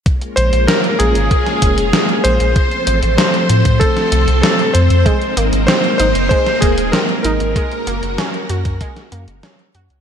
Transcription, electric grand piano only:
\new Staff \with { instrumentName = "Electric grand piano" } { \time 4/4 \key bes \minor \tempo 4 = 96 r8 c''8 bes'8 aes'2 c''8~ | c''4 c''4 a'4 a'8 c''8~ | c''8 r8 c''8 c''8 c''8 aes'8 bes'8 bes'8~ | bes'2. r4 | }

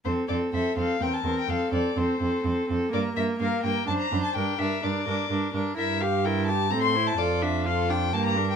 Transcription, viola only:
\new Staff \with { instrumentName = "Viola" } { \time 3/4 \key f \major \tempo 4 = 126 c'8 c'8 c'8 c'8 c'8 c'8 | c'8 c'8 c'8 c'8 c'8 c'8 | bes8 bes8 bes8 bes8 d'8 d'8 | d'8 d'8 d'8 d'8 d'8 d'8 |
e'8 g'8 e'8 g'8 c'8 e'8 | f'8 d'8 f'8 d'8 bes8 d'8 | }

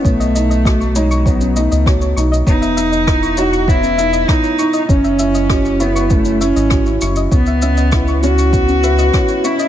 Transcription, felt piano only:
\new Staff \with { instrumentName = "Felt piano" } { \time 4/4 \key cis \minor \tempo 4 = 99 b8 dis'8 fis'8 dis'8 b8 dis'8 fis'8 dis'8 | b8 dis'8 e'8 dis'8 b8 dis'8 e'8 dis'8 | cis'8 e'8 fis'8 e'8 cis'8 e'8 r8 e'8 | b8 cis'8 e'8 cis'8 b8 b'8 e'8 cis'8 | }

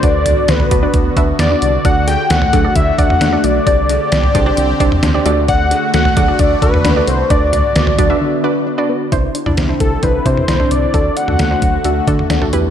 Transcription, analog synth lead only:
\new Staff \with { instrumentName = "Analog synth lead" } { \time 4/4 \key d \mixolydian \tempo 4 = 132 d''4 b'4. r8 d''4 | fis''8 g''8 fis''4 e''8 fis''4 d''8~ | d''2.~ d''8 r8 | fis''4 fis''4 d''8 b'4 c''8 |
d''2. r4 | r4. a'8 b'8 c''4 d''8~ | d''8 fis''2 r4. | }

